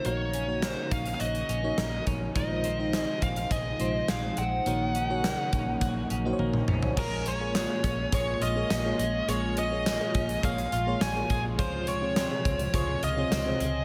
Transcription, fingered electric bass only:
X:1
M:4/4
L:1/16
Q:1/4=104
K:Bbm
V:1 name="Fingered electric bass" clef=bass
B,,,4- B,,, z B,,,2 B,,,2 B,,,2 B,,,2 B,,,2 | B,,,4- B,,, z B,,,2 B,,,2 B,,,2 B,,,2 B,,,2 | B,,,4- B,,, z B,,,2 B,,,2 B,,,2 B,,,2 B,,,2 | B,,,4- B,,, z B,,,2 B,,,2 B,,,2 B,,,2 B,,,2 |
B,,,4- B,,, z B,,,2 B,,,2 B,,,2 B,,,2 B,,,2 | D,,4- D,, z D,,2 D,,2 D,,2 D,,2 D,,2 |]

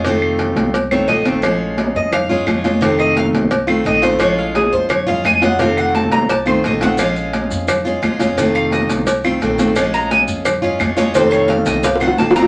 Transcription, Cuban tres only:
X:1
M:4/4
L:1/8
Q:1/4=173
K:Bbm
V:1 name="Cuban tres"
z4 z d e z | z3 e f z3 | z e f z3 e c | d F A c d f a g |
f g =a b a c e g | f6 z2 | z f e z4 z | z b a z4 d |
c d f e f g =a b |]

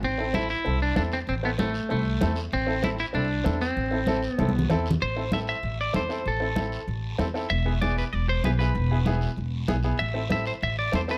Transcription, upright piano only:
X:1
M:4/4
L:1/8
Q:1/4=193
K:Am
V:1 name="Upright piano"
z [CEA] [CEA] z [CEA] z [CEA] z | z [CEA] [CEA] z [CEA] z [CEA] z | z [CEA] [CEA] z [CEA] z [CEA] z | z [CEA] [CEA] z [CEA] z [CEA] z |
z [CEA] [CEA] z3 [CEA] [CEA] | z [CEA] [CEA] z3 [CEA] [CEA] | z [B,E^G] [B,EG] z3 [B,EG] [B,EG] | z [B,E^G] [B,EG] z3 [B,EG] [B,EG] |
z [CEA] [CEA] z3 [CEA] [CEA] |]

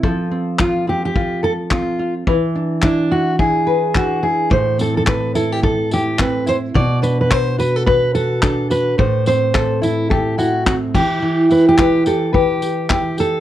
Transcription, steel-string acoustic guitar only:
X:1
M:4/4
L:1/16
Q:"Swing 16ths" 1/4=107
K:Ephr
V:1 name="Steel-string acoustic guitar"
z4 F2 G G3 A2 F3 z | z4 D2 ^F2 ^G4 F2 G2 | [K:Ador] c2 A A B2 A G A2 G2 B2 c2 | d2 B B c2 B A B2 A2 A2 B2 |
c2 c4 E2 G2 F2 F2 G2- | G2 B G G2 A2 G4 G2 A2 |]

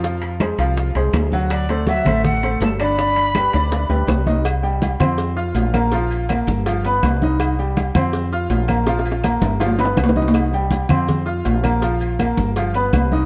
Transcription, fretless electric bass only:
X:1
M:4/4
L:1/8
Q:1/4=163
K:Cm
V:1 name="Fretless electric bass" clef=bass
F,,3 C,,2 C,, D,,2- | D,,3 =A,,,3 G,,,2- | G,,,3 D,,2 D,, C,,2- | C,,3 F,,3 B,,,2- |
B,,,3 G,,,3 C,,2- | C,,3 F,,3 B,,,2- | B,,,3 G,,,3 C,,2- | C,,3 F,,3 B,,,2- |
B,,,3 G,,,3 C,,2 |]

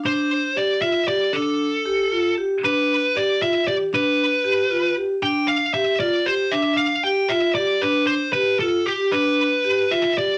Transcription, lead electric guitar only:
X:1
M:5/8
L:1/8
Q:1/4=116
K:Ddor
V:1 name="Lead electric guitar"
c2 d e d | A4 z | B2 d e d | B4 z |
g f e d c | e f g e d | B c B A G | B3 e d |]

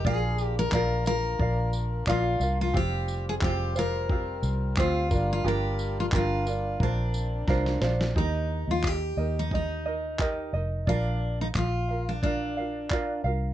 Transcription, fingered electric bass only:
X:1
M:4/4
L:1/16
Q:"Swing 16ths" 1/4=89
K:Eb
V:1 name="Fingered electric bass" clef=bass
B,,,4 B,,,4 B,,,4 B,,,2 C,,2 | F,,,4 F,,,6 C,,2 D,,2 G,,,2 | G,,,4 G,,,4 B,,,4 C,,2 B,,,2 | E,,3 E,,3 E,,8 F,,,2 |
B,,,4 B,,,8- B,,,2 C,,2 |]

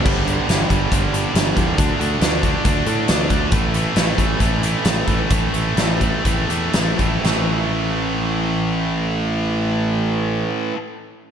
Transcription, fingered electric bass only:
X:1
M:4/4
L:1/8
Q:1/4=131
K:G
V:1 name="Fingered electric bass" clef=bass
G,,,2 G,,, G,,, G,,,2 G,,, E,, | D,, D,, D,,2 D,, A,, D,, D,, | A,,,2 A,,, A,,, A,,,2 A,,, A,,, | A,,, A,,, A,,,2 A,,, E,, A,,, A,,, |
A,,,8- | A,,,8 |]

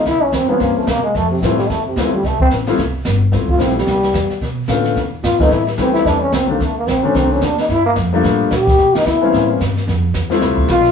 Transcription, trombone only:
X:1
M:4/4
L:1/8
Q:"Swing" 1/4=220
K:F
V:1 name="Trombone"
E _D C =B, _B, A, B, _A, | A, C, E, G, A, C, E, G, | A, C z6 | z F C G,4- G, |
z6 F _E | E G, C E D _D C B, | A, B, C _D C D =D _E | E B, z4 G2- |
G _E =E3 C z2 | z6 F2 |]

